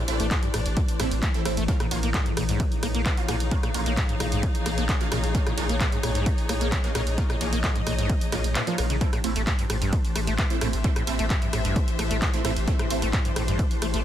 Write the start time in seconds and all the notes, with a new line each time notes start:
Already playing: A2 E3 D4 G4 C5 D5
0.08 A1 A3 C4 E4, open hi-hat, ride
0.20 A1 A3, closed hi-hat
0.31 A2, kick, clap, closed hi-hat, ride
0.43 G2, closed hi-hat
0.54 A1 A2, cross-stick, open hi-hat, ride
0.66 A1, closed hi-hat
0.77 A2, kick, closed hi-hat, ride
0.88 closed hi-hat
1.00 A1 A2 A3 C4 E4, cross-stick, open hi-hat, ride
1.11 A1, closed hi-hat
1.22 A3, kick, clap, closed hi-hat, ride
1.34 A3 C4 E4, closed hi-hat
1.45 A1 A3 C4 E4, cross-stick, open hi-hat, ride
1.57 A1 A3, closed hi-hat
1.68 A#2 A#3 C#4 D#4 F4, kick, closed hi-hat, ride
1.80 A#2, cross-stick, closed hi-hat
1.91 A#1 A#3 C#4 F4, open hi-hat, ride
2.03 A#1 A#3, closed hi-hat
2.14 A#2, kick, clap, closed hi-hat, ride
2.23 G#2 G#4, closed hi-hat
2.37 A#1 A#2 C#5, cross-stick, open hi-hat, ride
2.49 A#1 G#2, closed hi-hat
2.60 A#2, kick, closed hi-hat, ride
2.72 open hi-hat
2.83 A#1 A#3, cross-stick, open hi-hat, ride
2.90 F5
2.95 A#1 A#3, closed hi-hat
3.06 C#3, kick, clap, closed hi-hat, ride
3.17 A#3 C#4 F4, closed hi-hat
3.28 A#1 A#2 A#3 C#4 F4, cross-stick, open hi-hat, ride
3.40 A#1, closed hi-hat
3.51 A#2 A#3 C#4 F4, kick, closed hi-hat, ride
3.63 A#2, cross-stick, closed hi-hat
3.74 A#1 A#3 C#4 F4, open hi-hat, ride
3.86 A#1 A#3, closed hi-hat
3.97 A#2, kick, clap, closed hi-hat, ride
4.09 G#2, closed hi-hat
4.20 A#1 A#2, cross-stick, open hi-hat, ride
4.32 A#1 G#2, closed hi-hat
4.43 A#2, kick, closed hi-hat, ride
4.55 closed hi-hat
4.66 A#1 A#3, cross-stick, open hi-hat, ride
4.78 A#1 A#3, closed hi-hat
4.89 C#3, kick, clap, closed hi-hat, ride
5.01 A#3 C#4 F4, closed hi-hat
5.12 A#1 A#2 A#3 C#4 F4, cross-stick, open hi-hat, ride
5.24 A#1, closed hi-hat
5.35 A#2 A#3 C#4 F4, kick, closed hi-hat, ride
5.46 A#2, cross-stick, closed hi-hat
5.58 A#1 A#3 C#4 F4, open hi-hat, ride
5.69 A#1 A#3, closed hi-hat
5.80 A#2, kick, clap, closed hi-hat, ride
5.92 G#2, closed hi-hat
6.03 A#1 A#2, cross-stick, open hi-hat, ride
6.15 A#1 G#2, closed hi-hat
6.26 A#2, kick, closed hi-hat, ride
6.38 open hi-hat
6.49 A#1 A#3 D#5, cross-stick, open hi-hat, ride
6.61 A#1 A#3, closed hi-hat
6.72 C#3, kick, clap, closed hi-hat, ride
6.84 A#3 C#4 F4, closed hi-hat
6.95 A#1 A#2 A#3 C#4 F4, cross-stick, open hi-hat, ride
7.07 A#1, closed hi-hat
7.18 A#2 A#3 C#4 F4, kick, closed hi-hat, ride
7.30 A#2, cross-stick, open hi-hat
7.41 A#1 A#3 C#4 F4, open hi-hat, ride
7.53 A#1 A#3, closed hi-hat
7.64 A#2, kick, clap, closed hi-hat, ride
7.76 G#2, closed hi-hat
7.87 A#1 A#2, cross-stick, open hi-hat, ride
7.98 A#1 G#2, closed hi-hat
8.09 A#2, kick, closed hi-hat, ride
8.21 closed hi-hat
8.32 A#1 A#3 C#4 F4, cross-stick, open hi-hat, ride
8.44 A#1, closed hi-hat
8.55 A#2, clap, closed hi-hat, ride
8.67 F3 A#3 C#4 F4, closed hi-hat
8.78 A#1 A#3 C#4 F4, cross-stick, open hi-hat, ride
8.90 A#1 C#3, closed hi-hat
9.01 A2 E3 A3 C4 D4 E4, kick, closed hi-hat, ride
9.10 A2 G4, cross-stick, closed hi-hat
9.24 A1 A3 C4 E4, open hi-hat, ride
9.36 A1 A3, closed hi-hat
9.47 A2, kick, clap, closed hi-hat, ride
9.57 G2 C5, closed hi-hat
9.70 A1 A2, cross-stick, open hi-hat, ride
9.81 A1 G2, closed hi-hat
9.92 A2, kick, closed hi-hat, ride
10.05 open hi-hat
10.15 A1 A3, cross-stick, open hi-hat, ride
10.25 A1 A3 E5, closed hi-hat
10.38 C3, kick, clap, closed hi-hat, ride
10.50 A3 C4 E4, closed hi-hat
10.61 A1 A2 A3 C4 E4, cross-stick, open hi-hat, ride
10.73 A1, closed hi-hat
10.84 A2 A3 C4 E4, kick, closed hi-hat, ride
10.96 A2, cross-stick, closed hi-hat
11.07 A1 A3 C4 E4, open hi-hat, ride
11.19 A1 A3, closed hi-hat
11.30 A2, kick, clap, closed hi-hat, ride
11.42 G2, closed hi-hat
11.53 A1 A2, cross-stick, open hi-hat, ride
11.65 A1 G2, closed hi-hat
11.76 A2, kick, closed hi-hat, ride
11.88 closed hi-hat
11.99 A1 A3, cross-stick, open hi-hat, ride
12.11 A1 A3, closed hi-hat
12.22 C3, kick, clap, closed hi-hat, ride
12.34 A3 C4 E4, closed hi-hat
12.45 A1 A2 A3 C4 E4, cross-stick, open hi-hat, ride
12.56 A1, closed hi-hat
12.68 A2 A3 C4 E4, kick, closed hi-hat, ride
12.79 A2, cross-stick, closed hi-hat
12.90 A1 A3 C4 E4, open hi-hat, ride
13.02 A1 A3, closed hi-hat
13.13 A2, kick, clap, closed hi-hat, ride
13.25 G2, closed hi-hat
13.36 A1 A2, cross-stick, open hi-hat, ride
13.48 A1 G2, closed hi-hat
13.59 A2, kick, closed hi-hat, ride
13.71 open hi-hat
13.82 A1 A3, cross-stick, open hi-hat, ride
13.92 A1 A3 D5, closed hi-hat